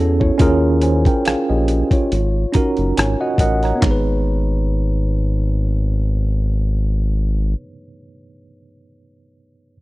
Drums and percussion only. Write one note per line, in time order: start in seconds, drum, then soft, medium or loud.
0.21 kick medium
0.39 kick loud
0.39 closed hi-hat medium
0.81 closed hi-hat medium
1.05 kick medium
1.05 closed hi-hat soft
1.25 cross-stick loud
1.25 closed hi-hat medium
1.68 closed hi-hat soft
1.91 kick medium
1.91 closed hi-hat soft
2.12 closed hi-hat medium
2.54 kick medium
2.54 closed hi-hat medium
2.77 closed hi-hat soft
2.97 cross-stick loud
2.97 closed hi-hat medium
3.38 kick medium
3.38 closed hi-hat medium
3.63 cross-stick soft
3.63 closed hi-hat soft
3.82 kick medium
3.82 clap medium